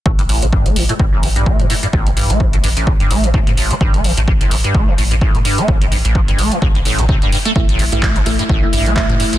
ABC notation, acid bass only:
X:1
M:4/4
L:1/16
Q:"Swing 16ths" 1/4=128
K:Cmix
V:1 name="Acid bass" clef=bass
A,, G,, A,,, A, G,, A, E, A,, G,, A,,, A, G,, A, E, A,, G,, | A,,, A, G,, A, E, A,, G,, A,,, A, G,, A, E, A,, G,, A,,, A, | G,, A, E, A,, G,, A,,, A, G,, A, E, A,, G,, A,,, A, G,, A, | E, A,, G,, A,,, A, G,, A, E, A,, G,, A,,, C, C, G,, G,, A, |
G,, A,,, A, G,, A, E, A,, G,, A,,, A, G,, A, E, A,, G,, A,,, |]